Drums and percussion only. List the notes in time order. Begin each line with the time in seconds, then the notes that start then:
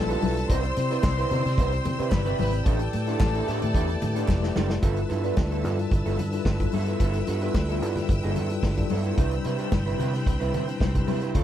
0.10 closed hi-hat
0.22 open hi-hat, high conga
0.37 closed hi-hat
0.50 kick, closed hi-hat
0.63 closed hi-hat
0.77 closed hi-hat, muted conga
0.90 closed hi-hat
1.03 kick, snare, clap, high conga
1.18 closed hi-hat
1.31 closed hi-hat, low conga
1.45 snare, closed hi-hat
1.58 kick, closed hi-hat
1.72 closed hi-hat
1.85 closed hi-hat, muted conga, low conga
1.99 closed hi-hat
2.11 kick, snare, clap, high conga
2.26 closed hi-hat
2.38 open hi-hat, high conga
2.53 closed hi-hat
2.66 kick, closed hi-hat
2.79 closed hi-hat
2.93 closed hi-hat, muted conga
3.07 closed hi-hat
3.20 kick, snare, clap, high conga
3.35 closed hi-hat
3.48 closed hi-hat, muted conga
3.62 closed hi-hat, low conga
3.74 kick, closed hi-hat
3.89 closed hi-hat
4.02 closed hi-hat, muted conga, low conga
4.16 closed hi-hat
4.28 kick, snare, clap, high conga
4.43 snare
4.56 snare, high conga
4.70 snare
4.83 kick, closed hi-hat
4.97 closed hi-hat
5.10 closed hi-hat, muted conga
5.24 closed hi-hat
5.37 kick, snare, high conga
5.52 closed hi-hat
5.64 closed hi-hat, low conga
5.79 closed hi-hat
5.91 kick, closed hi-hat
6.06 closed hi-hat
6.19 closed hi-hat, muted conga, low conga
6.33 closed hi-hat
6.45 kick, snare, high conga
6.60 kick, closed hi-hat, high conga
6.72 open hi-hat, high conga
6.86 closed hi-hat
7.00 kick, closed hi-hat
7.13 closed hi-hat
7.27 closed hi-hat, muted conga
7.41 closed hi-hat
7.54 kick, snare, high conga
7.69 closed hi-hat
7.82 closed hi-hat
7.96 snare, closed hi-hat, low conga
8.09 kick, closed hi-hat
8.23 closed hi-hat
8.36 closed hi-hat, muted conga, low conga
8.50 closed hi-hat
8.63 kick, snare, high conga
8.77 kick, closed hi-hat, high conga
8.90 open hi-hat, high conga
9.04 closed hi-hat
9.18 kick, closed hi-hat
9.31 closed hi-hat
9.44 closed hi-hat, muted conga
9.58 closed hi-hat
9.72 kick, snare, high conga
9.87 closed hi-hat
10.00 closed hi-hat, muted conga, low conga
10.14 snare, closed hi-hat
10.26 kick, closed hi-hat
10.41 closed hi-hat
10.54 closed hi-hat, muted conga, low conga
10.68 closed hi-hat
10.80 kick, snare, high conga
10.95 kick, closed hi-hat, high conga
11.07 open hi-hat, high conga
11.21 closed hi-hat
11.35 kick, closed hi-hat